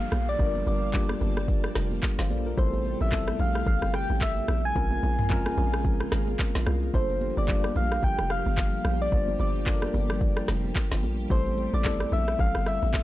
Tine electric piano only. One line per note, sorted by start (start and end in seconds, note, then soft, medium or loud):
0.00 0.38 G3 medium
0.00 0.39 A#3 medium
0.00 0.39 D4 medium
0.00 0.40 F4 medium
0.00 0.95 G4 medium
0.00 2.31 A4 medium
0.38 0.84 G3 medium
0.38 0.85 A#3 medium
0.38 0.85 D4 medium
0.38 0.85 F4 medium
0.38 0.85 A#4 medium
0.93 1.82 G3 medium
0.93 1.82 A#3 medium
0.93 1.82 D4 medium
0.93 1.82 F4 medium
0.93 1.83 G4 medium
2.19 2.30 C5 medium
2.19 2.30 F5 medium
2.30 2.46 A4 medium
2.30 2.45 D5 medium
2.46 2.72 F4 medium
2.46 2.72 A#4 medium
2.57 3.02 G3 medium
2.57 3.03 A3 medium
2.57 3.03 C4 medium
2.57 3.03 E4 medium
2.57 3.04 A4 medium
3.11 4.00 G3 medium
3.11 4.00 B3 medium
3.11 4.00 C4 medium
3.11 4.01 E4 medium
3.11 4.01 A4 medium
4.75 5.21 G#3 medium
4.75 5.21 C4 medium
4.75 5.21 C#4 medium
4.75 5.22 F4 medium
4.75 5.22 A#4 medium
5.29 6.18 G#3 medium
5.29 6.18 C4 medium
5.29 6.18 C#4 medium
5.29 6.19 F4 medium
5.29 6.19 A#4 loud
6.93 7.39 G3 medium
6.93 7.39 A#3 medium
6.93 7.39 D4 medium
6.93 7.40 F4 medium
6.93 7.40 A4 medium
7.47 8.36 G3 medium
7.47 8.36 A#3 medium
7.47 8.37 D4 medium
7.47 8.37 F4 medium
7.47 8.37 G4 medium
9.11 9.57 G3 medium
9.11 9.57 A#3 medium
9.11 9.58 D4 medium
9.11 9.58 F4 medium
9.11 9.58 C5 medium
9.66 10.54 G3 medium
9.66 10.55 A#3 medium
9.66 10.55 D4 medium
9.66 10.55 F4 medium
9.66 9.75 A4 medium
9.74 10.59 A#4 medium
11.29 11.75 G3 medium
11.29 11.75 A3 medium
11.29 11.76 C4 medium
11.29 11.76 E4 medium
11.29 11.76 A4 medium
11.84 12.72 G3 medium
11.84 12.73 B3 medium
11.84 12.73 C4 medium
11.84 12.73 E4 medium
11.84 12.74 A4 medium